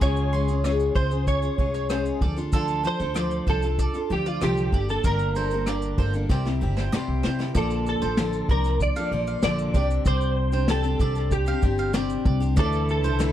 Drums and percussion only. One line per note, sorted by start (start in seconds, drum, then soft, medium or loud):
0.01 kick loud
0.01 shaker medium
0.16 shaker medium
0.48 shaker soft
0.64 cross-stick medium
0.64 shaker medium
0.80 shaker medium
0.95 kick medium
1.11 shaker medium
1.27 kick medium
1.27 shaker medium
1.42 shaker soft
1.58 kick medium
1.74 shaker soft
1.89 cross-stick loud
1.89 shaker medium
2.06 shaker medium
2.21 kick medium
2.37 shaker soft
2.52 kick loud
2.52 shaker medium
2.68 shaker soft
2.84 shaker soft
3.00 shaker soft
3.16 cross-stick loud
3.16 shaker medium
3.31 shaker medium
3.47 kick medium
3.62 shaker soft
3.78 kick medium
3.78 shaker medium
3.94 shaker soft
4.26 shaker soft
4.41 cross-stick loud
4.41 shaker medium
4.57 shaker soft
4.72 kick medium
4.89 shaker soft
5.04 kick medium
5.04 shaker medium
5.19 shaker medium
5.35 shaker soft
5.51 shaker soft
5.66 cross-stick medium
5.66 shaker medium
5.82 shaker medium
5.98 kick medium
6.13 shaker soft
6.29 kick medium
6.29 snare soft
6.46 snare soft
6.77 snare medium
6.93 snare medium
7.24 snare medium
7.40 snare medium
7.55 kick medium
7.55 shaker medium
7.70 shaker medium
7.86 shaker medium
8.02 shaker soft
8.17 snare loud
8.17 shaker medium
8.33 shaker medium
8.49 kick medium
8.64 snare soft
8.64 shaker medium
8.80 kick medium
8.80 shaker medium
8.96 shaker soft
9.27 shaker soft
9.42 snare loud
9.42 shaker medium
9.59 shaker medium
9.74 kick medium
9.74 shaker soft
9.91 shaker soft
10.05 kick loud
10.05 shaker medium
10.21 shaker soft
10.52 shaker soft
10.68 snare loud
10.68 shaker medium
10.83 shaker medium
10.99 kick medium
10.99 shaker soft
11.15 snare soft
11.15 shaker medium
11.31 kick medium
11.31 shaker medium
11.46 shaker medium
11.62 kick medium
11.62 shaker soft
11.78 shaker soft
11.93 snare loud
11.93 shaker medium
12.10 shaker medium
12.25 kick medium
12.42 shaker medium
12.57 kick loud
12.57 shaker medium
12.72 shaker medium
12.89 shaker soft
13.04 shaker medium
13.20 snare loud
13.20 shaker medium